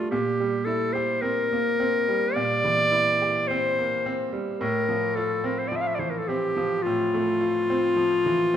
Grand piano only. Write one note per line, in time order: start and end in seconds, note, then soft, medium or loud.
0.00 0.13 G3 soft
0.00 0.13 A3 medium
0.00 0.14 D4 medium
0.00 0.13 F4 medium
0.12 2.31 A#2 medium
0.40 0.84 G3 soft
0.67 1.11 E4 medium
0.95 1.39 G4 medium
1.22 1.67 C4 soft
1.53 1.80 A#3 soft
1.80 2.24 C4 medium
2.08 2.53 G3 medium
2.36 4.56 A#2 medium
2.64 3.09 E3 soft
2.92 3.37 E4 medium
3.22 3.66 G4 medium
3.51 3.94 C4 medium
3.79 4.05 A#3 soft
4.06 4.50 C4 medium
4.33 4.60 G3 soft
4.61 6.80 A2 medium
4.89 5.32 F3 medium
5.17 5.61 F4 medium
5.44 5.88 C4 medium
5.72 6.16 F3 soft
5.99 6.27 E3 soft
6.29 6.73 C4 medium
6.57 7.01 F3 medium
6.86 8.57 A2 medium
7.14 7.58 A3 medium
7.41 7.85 F4 medium
7.70 8.14 C4 medium
7.96 8.42 F3 medium
8.26 8.54 E3 soft